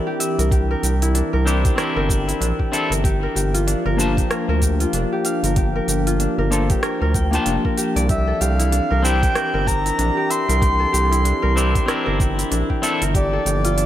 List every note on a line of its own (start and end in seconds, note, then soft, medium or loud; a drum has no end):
0.00 3.00 E3 medium
0.00 1.42 C4 medium
0.00 3.00 C4 medium
0.00 1.14 D4 medium
0.00 1.43 D4 medium
0.00 8.05 D4 medium
0.00 1.02 E4 medium
0.00 1.43 E4 medium
0.00 1.44 G4 medium
0.00 3.00 G4 medium
0.00 0.38 A#4 loud
0.00 0.91 C5 medium
0.07 0.51 G4 medium
0.20 1.92 E5 medium
0.20 open hi-hat medium
0.20 cabasa medium
0.39 0.75 C2 loud
0.39 0.70 A#4 medium
0.39 open hi-hat soft
0.39 cabasa soft
0.51 0.83 G4 medium
0.51 kick loud
0.51 open hi-hat medium
0.51 cabasa soft
0.71 1.33 A#4 loud
0.83 1.22 C2 loud
0.83 1.65 G4 medium
0.83 open hi-hat soft
0.83 cabasa medium
1.02 2.27 E4 medium
1.02 open hi-hat soft
1.02 cabasa soft
1.14 2.40 D4 medium
1.14 open hi-hat medium
1.14 cabasa soft
1.33 1.70 C2 loud
1.33 1.77 A#4 loud
1.45 1.74 C4 medium
1.45 1.75 D4 medium
1.45 1.75 E4 medium
1.45 1.75 G4 medium
1.45 3.44 C5 medium
1.45 cabasa medium
1.65 2.09 G4 medium
1.65 kick loud
1.65 open hi-hat medium
1.65 cabasa soft
1.76 2.69 C4 medium
1.76 2.70 D4 medium
1.76 2.70 E4 medium
1.76 1.96 A#4 loud
1.76 cross-stick medium
1.76 open hi-hat soft
1.76 cabasa soft
1.80 2.71 G4 loud
1.96 2.33 G1 medium
1.96 2.90 A#4 loud
2.09 2.59 G4 medium
2.09 kick loud
2.09 open hi-hat soft
2.09 cabasa medium
2.28 3.60 E4 medium
2.28 open hi-hat soft
2.28 cabasa soft
2.40 2.53 A#1 medium
2.40 3.67 D4 medium
2.40 open hi-hat medium
2.40 cabasa soft
2.59 3.03 G4 medium
2.59 kick medium
2.72 2.91 C4 loud
2.72 2.91 D4 medium
2.72 2.92 E4 medium
2.72 2.92 A4 loud
2.72 3.60 E5 medium
2.72 open hi-hat soft
2.72 cabasa medium
2.90 3.28 G1 loud
2.90 3.22 A#4 medium
2.90 open hi-hat soft
2.90 cabasa soft
3.03 8.05 F3 medium
3.03 8.05 A#3 medium
3.03 13.86 G4 medium
3.03 3.35 G4 medium
3.03 kick loud
3.03 open hi-hat medium
3.03 cabasa soft
3.23 3.85 A#4 medium
3.35 3.75 G1 loud
3.35 4.17 G4 medium
3.35 open hi-hat soft
3.35 cabasa medium
3.54 4.80 F4 medium
3.54 open hi-hat soft
3.54 cabasa soft
3.67 4.93 D4 medium
3.67 open hi-hat medium
3.67 cabasa soft
3.86 4.23 G1 loud
3.86 4.30 A#4 loud
3.97 6.47 A#3 medium
3.97 6.48 D4 medium
3.97 6.49 F4 medium
3.97 5.96 C5 medium
3.97 6.49 A5 loud
3.97 cabasa medium
4.17 4.62 G4 medium
4.17 kick loud
4.17 open hi-hat soft
4.17 cabasa soft
4.30 4.49 A#4 loud
4.30 cross-stick medium
4.30 open hi-hat soft
4.30 cabasa soft
4.49 4.86 D2 medium
4.49 5.44 A#4 loud
4.62 5.12 G4 medium
4.62 kick medium
4.62 open hi-hat soft
4.62 cabasa medium
4.80 6.06 F4 medium
4.80 open hi-hat soft
4.80 cabasa soft
4.93 5.05 F1 medium
4.93 6.19 D4 medium
4.93 open hi-hat medium
4.93 cabasa soft
5.13 5.56 G4 medium
5.25 6.92 F5 medium
5.25 open hi-hat soft
5.25 cabasa medium
5.43 5.80 G1 loud
5.43 5.75 A#4 medium
5.43 open hi-hat soft
5.43 cabasa soft
5.56 5.88 G4 medium
5.56 kick loud
5.56 open hi-hat medium
5.56 cabasa soft
5.76 6.38 A#4 medium
5.88 6.27 G1 loud
5.88 6.69 G4 medium
5.88 open hi-hat soft
5.88 cabasa medium
6.07 8.59 F4 medium
6.07 open hi-hat soft
6.07 cabasa soft
6.20 7.46 D4 medium
6.20 open hi-hat medium
6.20 cabasa soft
6.38 6.75 G1 loud
6.38 6.82 A#4 loud
6.50 6.79 A#3 medium
6.50 6.80 D4 medium
6.50 6.80 F4 medium
6.50 6.80 A4 medium
6.50 8.49 C5 medium
6.50 open hi-hat soft
6.50 cabasa medium
6.70 7.77 G4 medium
6.70 kick loud
6.70 open hi-hat soft
6.70 cabasa soft
6.83 7.01 A#4 loud
6.83 cross-stick medium
6.83 open hi-hat soft
6.83 cabasa soft
7.01 7.38 D2 medium
7.01 7.64 A#4 loud
7.14 7.33 G5 medium
7.14 kick loud
7.14 open hi-hat soft
7.14 cabasa medium
7.31 8.06 A#3 loud
7.31 8.07 D4 medium
7.31 8.08 F4 medium
7.31 8.89 G5 medium
7.31 open hi-hat soft
7.31 cabasa soft
7.35 8.09 A5 loud
7.46 7.58 F1 medium
7.46 8.72 D4 medium
7.46 open hi-hat medium
7.46 cabasa soft
7.65 8.33 A#4 loud
7.65 kick medium
7.77 8.08 G4 medium
7.77 open hi-hat soft
7.77 cabasa medium
7.96 8.33 C2 loud
7.96 9.81 D5 loud
7.96 open hi-hat soft
7.96 cabasa soft
8.09 13.10 E3 medium
8.09 13.10 C4 medium
8.09 13.86 D4 medium
8.09 8.40 G4 medium
8.09 8.42 E5 medium
8.09 kick loud
8.09 open hi-hat medium
8.09 cabasa soft
8.27 8.96 A4 medium
8.41 8.80 C2 loud
8.41 9.22 G4 medium
8.41 9.04 F5 loud
8.41 open hi-hat soft
8.41 cabasa medium
8.59 9.85 E4 medium
8.59 open hi-hat soft
8.59 cabasa soft
8.72 9.98 D4 medium
8.72 open hi-hat medium
8.72 cabasa soft
8.90 9.28 C2 loud
8.90 9.35 A#4 loud
9.03 11.53 C4 medium
9.03 11.53 D4 medium
9.03 11.54 E4 medium
9.03 11.55 G4 medium
9.03 11.01 C5 medium
9.03 9.69 G5 loud
9.03 cabasa medium
9.22 9.66 G4 medium
9.22 kick loud
9.22 open hi-hat soft
9.22 cabasa soft
9.35 9.53 A#4 loud
9.35 cross-stick medium
9.35 open hi-hat soft
9.35 cabasa soft
9.54 9.91 G1 medium
9.54 10.48 A#4 loud
9.66 10.17 G4 medium
9.66 10.32 A#5 loud
9.66 kick medium
9.66 open hi-hat soft
9.66 cabasa medium
9.86 11.11 E4 medium
9.86 open hi-hat soft
9.86 cabasa soft
9.98 10.11 A#1 medium
9.98 11.24 D4 medium
9.98 open hi-hat medium
9.98 cabasa soft
10.17 10.61 G4 medium
10.30 12.02 E5 medium
10.30 12.20 C6 loud
10.30 open hi-hat soft
10.30 cabasa medium
10.48 10.86 C2 medium
10.48 10.85 A#4 medium
10.48 open hi-hat soft
10.48 cabasa soft
10.61 10.92 G4 medium
10.61 kick loud
10.61 open hi-hat medium
10.61 cabasa soft
10.79 11.48 A4 medium
10.92 11.33 C2 loud
10.92 11.74 G4 medium
10.92 open hi-hat soft
10.92 cabasa medium
11.11 12.38 E4 medium
11.11 open hi-hat soft
11.11 cabasa soft
11.24 12.51 D4 medium
11.24 open hi-hat medium
11.24 cabasa soft
11.42 11.81 C2 loud
11.42 11.87 A#4 loud
11.56 11.85 C4 medium
11.56 11.85 D4 medium
11.56 11.85 E4 medium
11.56 11.86 G4 medium
11.56 13.54 C5 medium
11.56 cabasa medium
11.75 12.19 G4 medium
11.75 kick loud
11.75 open hi-hat medium
11.75 cabasa soft
11.86 12.79 C4 loud
11.86 12.80 D4 medium
11.86 12.81 E4 medium
11.86 12.81 G4 medium
11.86 12.06 A#4 loud
11.86 cross-stick medium
11.86 open hi-hat soft
11.86 cabasa soft
12.06 12.44 G1 medium
12.06 13.01 A#4 loud
12.19 12.69 G4 medium
12.19 kick loud
12.19 open hi-hat soft
12.19 cabasa medium
12.38 13.71 E4 medium
12.38 open hi-hat soft
12.38 cabasa soft
12.51 12.63 A#1 medium
12.51 13.77 D4 medium
12.51 open hi-hat medium
12.51 cabasa soft
12.70 13.14 G4 medium
12.70 kick medium
12.82 13.01 C4 loud
12.82 13.02 D4 medium
12.82 13.02 E4 medium
12.82 13.02 A4 loud
12.82 13.71 E5 medium
12.82 open hi-hat medium
12.82 cabasa medium
13.02 13.39 G1 loud
13.02 13.39 A#4 medium
13.02 open hi-hat soft
13.02 cabasa soft
13.14 13.86 F3 medium
13.14 13.86 A#3 medium
13.14 13.45 G4 medium
13.14 13.86 D5 loud
13.14 kick loud
13.14 open hi-hat medium
13.14 cabasa soft
13.33 13.86 A4 loud
13.46 13.85 G1 loud
13.46 13.86 G4 medium
13.46 open hi-hat soft
13.46 cabasa medium
13.65 13.86 F4 medium
13.65 open hi-hat soft
13.65 cabasa soft
13.77 13.86 D4 medium
13.77 open hi-hat medium
13.77 cabasa soft